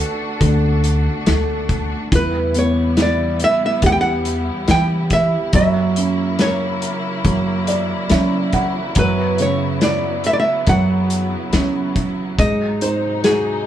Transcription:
0.00 0.40 D3 medium
0.00 0.79 A3 soft
0.00 2.08 A3 medium
0.00 2.08 D4 medium
0.00 1.22 F#4 soft
0.00 2.08 F#4 medium
0.00 0.37 A4 medium
0.41 1.06 D2 medium
0.41 2.08 D3 medium
0.41 kick medium
0.41 closed hi-hat medium
0.84 closed hi-hat soft
1.26 1.92 D2 medium
1.26 2.09 A3 medium
1.26 snare medium
1.26 closed hi-hat medium
1.69 kick medium
1.69 closed hi-hat soft
2.12 3.43 E2 medium
2.12 12.36 C#3 medium
2.12 5.50 E3 medium
2.12 5.51 G3 medium
2.12 5.51 B3 medium
2.12 12.36 E4 medium
2.12 2.57 B4 medium
2.12 kick medium
2.12 closed hi-hat medium
2.54 4.21 B3 soft
2.54 closed hi-hat soft
2.58 3.00 C#5 medium
2.97 4.64 E4 medium
2.97 snare medium
2.97 closed hi-hat medium
3.02 3.39 D5 medium
3.40 closed hi-hat soft
3.44 3.62 E5 medium
3.66 3.85 E5 medium
3.82 4.48 E2 loud
3.82 5.50 G4 medium
3.82 kick medium
3.82 closed hi-hat medium
3.86 3.91 F#5 loud
3.92 3.98 G5 medium
4.01 4.70 F#5 loud
4.25 closed hi-hat soft
4.68 5.34 E3 medium
4.68 5.51 E4 medium
4.68 5.13 G5 loud
4.68 snare medium
4.68 closed hi-hat medium
5.10 5.54 E5 medium
5.10 kick medium
5.10 closed hi-hat medium
5.53 6.85 F#2 medium
5.53 7.24 F#3 medium
5.53 13.66 F#3 medium
5.53 8.94 A#3 medium
5.53 6.41 E5 medium
5.53 kick medium
5.53 closed hi-hat medium
5.96 7.64 C#4 soft
5.96 closed hi-hat medium
6.39 8.07 A#4 soft
6.39 8.51 C#5 medium
6.39 snare medium
6.39 closed hi-hat medium
6.82 closed hi-hat medium
7.25 7.91 F#2 medium
7.25 8.93 F#3 medium
7.25 kick medium
7.25 closed hi-hat medium
7.67 8.08 D5 medium
7.67 closed hi-hat medium
8.10 8.77 F#3 medium
8.10 8.94 C#4 medium
8.10 8.51 E5 medium
8.10 snare medium
8.10 closed hi-hat medium
8.53 8.94 F#5 medium
8.53 kick medium
8.53 closed hi-hat soft
8.95 10.28 F#2 medium
8.95 10.67 F#3 medium
8.95 12.36 B3 medium
8.95 9.42 B4 medium
8.95 kick loud
8.95 closed hi-hat medium
9.38 11.07 C#3 soft
9.38 9.81 C#5 medium
9.38 closed hi-hat soft
9.81 11.50 E4 soft
9.81 10.23 D5 medium
9.81 snare medium
9.81 closed hi-hat medium
10.24 10.33 E5 medium
10.24 closed hi-hat soft
10.33 10.39 D5 medium
10.40 10.69 E5 medium
10.67 11.33 F#2 medium
10.67 12.35 F#3 medium
10.67 12.36 F#5 loud
10.67 kick medium
10.67 closed hi-hat medium
11.10 closed hi-hat soft
11.53 12.19 F#3 medium
11.53 12.37 C#4 medium
11.53 snare medium
11.53 closed hi-hat medium
11.96 kick medium
11.96 closed hi-hat soft
12.39 13.66 G#2 medium
12.39 13.66 C3 medium
12.39 13.66 G#3 medium
12.39 13.66 D#4 medium
12.39 12.83 D#5 medium
12.39 kick medium
12.39 closed hi-hat medium
12.81 13.66 D#4 soft
12.81 13.22 C5 medium
12.81 closed hi-hat soft
13.24 13.66 F#4 medium
13.24 13.66 G#4 medium
13.24 snare medium
13.24 closed hi-hat medium

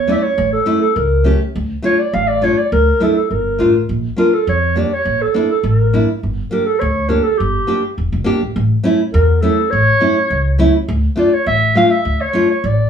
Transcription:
0.00 0.14 E2 medium
0.00 0.11 C#5 medium
0.08 0.22 A3 medium
0.08 0.23 C#4 medium
0.08 0.23 E4 medium
0.08 0.13 D5 loud
0.08 0.17 E5 medium
0.15 0.24 D5 medium
0.23 0.52 C#5 medium
0.38 0.55 A1 medium
0.53 0.79 A4 medium
0.66 0.81 A3 medium
0.66 0.81 C#4 medium
0.66 0.81 E4 medium
0.81 0.97 A4 medium
0.96 1.31 C#2 medium
0.96 1.40 A#4 medium
1.24 1.39 A3 medium
1.24 1.40 C#4 medium
1.24 1.40 G4 medium
1.56 1.73 D2 medium
1.82 1.98 A3 medium
1.82 1.98 D4 medium
1.82 1.98 F4 medium
1.82 2.00 C#5 medium
1.99 2.15 D5 medium
2.13 2.48 A1 loud
2.13 2.29 F5 loud
2.28 2.45 D5 medium
2.42 2.57 A3 medium
2.42 2.57 D4 medium
2.42 2.57 F4 medium
2.42 2.59 C#5 loud
2.57 2.72 D5 medium
2.72 2.89 D2 medium
2.72 2.99 A#4 loud
3.00 3.15 A3 medium
3.00 3.15 D4 medium
3.00 3.16 E4 medium
3.00 3.15 A4 medium
3.16 3.29 A4 medium
3.30 3.57 G1 medium
3.30 3.85 A#4 medium
3.59 3.86 A1 medium
3.59 3.74 A3 medium
3.59 3.74 D4 medium
3.59 3.74 F4 medium
3.89 4.06 A#1 medium
4.16 4.32 A#3 medium
4.16 4.32 D4 medium
4.16 4.32 F4 medium
4.16 4.35 A#4 medium
4.34 4.48 A4 medium
4.47 4.82 F2 medium
4.47 4.75 C#5 medium
4.76 4.91 A#3 medium
4.76 4.91 D4 medium
4.76 4.91 G4 medium
4.76 4.95 D5 medium
4.93 5.23 C#5 medium
5.05 5.23 A#1 medium
5.21 5.50 A4 medium
5.34 5.49 A#3 medium
5.34 5.49 D4 medium
5.34 5.50 E4 medium
5.51 5.67 A4 medium
5.63 5.99 A1 medium
5.63 6.09 A#4 medium
5.93 6.08 A#3 medium
5.93 6.08 D4 medium
5.93 6.08 E4 medium
6.23 6.41 G1 medium
6.51 6.66 A#3 medium
6.51 6.66 D4 medium
6.51 6.67 G4 medium
6.51 6.68 A#4 medium
6.66 6.81 A4 medium
6.80 7.16 D2 medium
6.80 7.10 C#5 medium
7.09 7.24 A#3 medium
7.09 7.24 D4 medium
7.09 7.25 G4 medium
7.09 7.25 A#4 medium
7.23 7.39 A4 medium
7.37 7.57 G1 medium
7.37 7.97 G4 medium
7.67 7.82 A#3 medium
7.67 7.83 D4 soft
7.67 7.83 G4 medium
7.98 8.11 E1 medium
8.12 8.25 F1 medium
8.24 8.40 G1 medium
8.24 8.40 A#3 medium
8.24 8.41 D4 medium
8.24 8.41 G4 medium
8.42 8.55 A1 medium
8.56 8.73 A1 medium
8.84 8.99 A3 medium
8.84 8.99 C#4 medium
8.84 9.00 E4 medium
9.13 9.49 E2 loud
9.13 9.43 A#4 medium
9.41 9.57 A3 medium
9.41 9.58 C#4 medium
9.41 9.58 E4 medium
9.41 9.72 A4 medium
9.70 9.90 A1 medium
9.70 10.59 C#5 loud
10.00 10.16 A3 medium
10.00 10.16 C#4 medium
10.00 10.16 E4 medium
10.30 10.65 C#2 medium
10.58 10.74 A3 medium
10.58 10.74 C#4 medium
10.58 10.74 E4 medium
10.88 11.06 D2 loud
11.16 11.31 A3 medium
11.16 11.32 D4 medium
11.16 11.32 F4 medium
11.16 11.35 D5 medium
11.34 11.46 C#5 medium
11.46 11.81 A1 loud
11.46 11.74 E5 loud
11.75 11.90 A3 medium
11.75 11.91 D4 medium
11.75 11.91 F4 medium
11.75 11.92 F5 loud
11.90 12.22 E5 loud
12.05 12.23 D2 medium
12.21 12.49 C#5 medium
12.33 12.48 A3 medium
12.33 12.49 D4 medium
12.33 12.49 F4 medium
12.50 12.67 C#5 medium
12.64 12.90 A1 medium
12.64 12.90 D5 medium

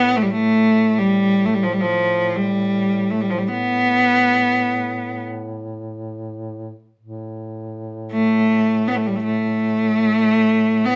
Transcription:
0.00 6.82 A2 soft
0.00 0.18 B3 medium
0.16 0.24 A3 medium
0.22 0.32 G3 medium
0.31 1.00 A3 medium
0.98 1.47 G3 medium
1.46 1.56 A3 medium
1.54 1.65 G3 medium
1.63 1.74 F3 medium
1.73 1.83 G3 medium
1.81 2.37 F3 medium
2.36 3.12 G3 medium
3.11 3.23 A3 medium
3.22 3.32 G3 medium
3.30 3.40 F3 medium
3.38 3.50 G3 medium
3.48 5.22 B3 medium
6.99 10.96 A2 soft
8.12 8.89 A3 medium
8.88 8.98 B3 medium
8.96 9.08 A3 medium
9.07 9.18 G3 medium
9.16 9.23 A3 medium
9.24 10.87 A3 medium
10.86 10.96 B3 medium

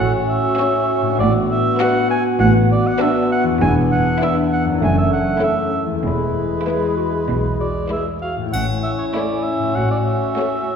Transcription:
0.00 0.47 A1 medium
0.00 0.47 A2 medium
0.00 1.01 A2 soft
0.00 1.15 C#4 soft
0.00 1.16 C#4 medium
0.00 1.22 C#4 soft
0.00 1.10 F#4 soft
0.00 3.61 F#4 medium
0.00 3.62 F#4 medium
0.00 1.20 A4 soft
0.00 0.13 F#5 medium
0.28 1.18 E5 medium
0.58 1.05 C#4 medium
0.58 1.04 F#4 medium
0.58 1.04 C#5 medium
1.02 3.54 A2 medium
1.06 3.47 D4 soft
1.11 3.59 F#4 soft
1.15 4.77 B3 medium
1.15 3.56 B4 soft
1.20 1.68 A1 medium
1.20 1.68 A2 medium
1.20 4.83 B3 medium
1.20 1.33 D5 medium
1.51 1.82 E5 medium
1.78 2.26 D4 medium
1.78 2.24 F#4 medium
1.78 2.25 B4 medium
1.78 2.10 F#5 medium
2.10 2.24 G#5 medium
2.40 2.89 A1 medium
2.40 2.88 A2 medium
2.40 2.54 F#5 medium
2.71 2.88 D5 medium
2.87 3.03 F#5 medium
2.99 3.46 D4 medium
2.99 3.45 F#4 medium
2.99 3.46 B4 medium
2.99 3.31 E5 medium
3.32 3.45 F#5 medium
3.43 4.75 E2 medium
3.48 4.77 D4 soft
3.52 4.72 E4 soft
3.57 5.38 D4 medium
3.57 4.81 D4 medium
3.57 4.81 B4 soft
3.61 4.09 E1 medium
3.61 4.09 E2 medium
3.61 3.75 G#5 medium
3.91 4.21 F#5 medium
4.20 4.66 D4 medium
4.20 4.65 E4 medium
4.20 4.66 B4 medium
4.20 4.36 E5 medium
4.53 4.66 F#5 medium
4.64 5.97 F#2 soft
4.68 6.00 C#4 soft
4.73 5.93 E4 soft
4.78 5.29 F#1 medium
4.78 5.29 F#2 medium
4.78 6.66 A3 medium
4.78 5.75 A3 medium
4.78 5.73 C#4 soft
4.78 6.04 A4 soft
4.84 4.97 G#5 medium
4.98 5.12 E5 medium
5.13 5.42 F#5 medium
5.41 6.03 C#4 soft
5.41 5.88 C#4 soft
5.41 5.87 E4 soft
5.41 5.88 A4 soft
5.41 5.82 E5 medium
5.86 8.47 E2 soft
5.90 8.50 G#3 soft
5.95 8.44 E4 soft
6.00 6.53 E1 soft
6.00 6.56 E4 soft
6.00 8.22 E4 soft
6.00 8.54 B4 soft
6.04 6.53 E2 soft
6.04 8.19 G#3 soft
6.04 7.57 B4 medium
6.65 7.13 G#3 soft
6.65 8.23 G#3 soft
6.65 7.12 E4 soft
6.65 6.95 G#4 soft
6.65 7.13 B4 soft
6.97 7.11 F#4 soft
7.28 7.78 B1 soft
7.28 7.78 B2 soft
7.28 7.42 E4 soft
7.60 7.74 F#4 soft
7.60 7.91 D5 soft
7.90 8.38 G#3 soft
7.90 8.37 E4 soft
7.90 8.05 G#4 soft
7.90 8.37 B4 soft
7.90 8.06 E5 soft
8.22 8.37 F#4 soft
8.22 8.36 F5 medium
8.36 9.58 A2 soft
8.41 9.62 A3 soft
8.45 9.75 E4 soft
8.50 9.02 A2 medium
8.50 9.77 E4 soft
8.50 9.71 C#5 soft
8.50 8.67 F#5 medium
8.50 triangle soft
8.54 9.03 A1 medium
8.54 10.76 C#4 soft
8.54 10.76 C#4 medium
8.54 9.73 E4 soft
8.83 8.90 E5 medium
8.98 9.05 C#5 medium
9.14 9.61 A3 soft
9.14 9.61 E4 soft
9.14 9.61 C#5 soft
9.14 9.44 D5 medium
9.43 9.77 E5 medium
9.59 10.76 A2 soft
9.63 10.76 A3 soft
9.68 10.76 F#4 soft
9.72 10.76 F#4 medium
9.72 10.76 C#5 soft
9.72 9.90 F#5 medium
9.76 10.25 A1 medium
9.76 10.25 A2 medium
9.76 10.76 F#4 medium
9.91 9.98 D5 medium
10.06 10.76 E5 medium
10.38 10.76 A3 soft
10.38 10.76 F#4 soft
10.38 10.76 C#5 soft

